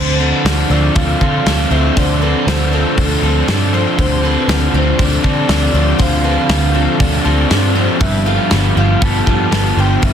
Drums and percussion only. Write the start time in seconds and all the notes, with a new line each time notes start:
0.46 snare, open hi-hat
0.96 kick, open hi-hat
1.21 kick
1.46 snare, open hi-hat
1.97 kick, open hi-hat
2.48 snare, open hi-hat
2.98 kick, open hi-hat
3.48 snare, open hi-hat
3.99 kick, open hi-hat
4.49 snare, open hi-hat
4.99 kick, open hi-hat
5.24 kick
5.49 snare, open hi-hat
6.00 kick, open hi-hat
6.49 snare, open hi-hat
7.00 kick, open hi-hat
7.51 snare, open hi-hat
8.01 kick, open hi-hat
8.51 snare, open hi-hat
9.02 kick, open hi-hat
9.27 kick
9.52 snare, open hi-hat
10.03 kick, open hi-hat